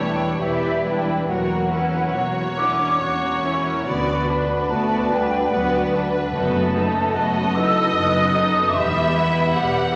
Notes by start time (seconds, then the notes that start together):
Already playing: E1 E2 E3 G3 B3 D4 E4 G4 B4 C#5 D5 G5
0.00 B4 G5
0.19 D5
0.40 E1 E2 E3 E4 G4 B4 D5 E5 G5
0.63 B4
0.85 G3 D4 E4 G4 B4 G5
1.07 D4
1.28 E1 E2 E3 F#3 A#3 F#4 A#4 C#5 F#5
1.50 A#3
1.71 C#4 E4 A#4 B4
1.92 F#4
2.13 E1 E2 A#3 F#4 A#4 C#5
2.36 C#5
2.57 C#4 D4 E4 A#4 F#5 D6
2.79 C#5
3.01 E1 E2 A#3 C#4 F#4 C#5 F#5 C#6
3.23 A#4
3.44 C#4 E4 F#4 A#4
3.66 C#4
3.86 D2 D3 B3 F#4 D5 B5
4.08 B3
4.28 D4 B4
4.32 B4
4.48 F#4
4.70 D2 A3 B3 F#4 B4 D5 A5
4.91 D5
5.11 G3 D4 B4 F#5 G5
5.31 D5
5.52 D2 F#3 B3 F#4 D5 F#5
5.73 B4
5.93 D4 F#4 B4
6.14 D4
6.33 F#1 F#2 A3 B3 F#4 A4 A5
6.54 F#3
6.75 B3 D#4 A4 B4
6.94 D#4
7.14 F#1 F#2 B3 F#4 A4 D#5
7.34 B4
7.54 D#4 E4 A4 B4 D#5 E6
7.74 B4
7.94 F#1 F#2 B3 D#4 F#4 A4 D#5 D#6
8.14 F#4
8.35 D#4 A4 B4
8.55 B3
8.75 E1 E2 E3 G3 B3 G4 E5 B5
8.96 B3
9.16 B3 E4 B4
9.35 G4
9.56 E1 E2 G3 G4 B4 E5 F#5
9.77 E5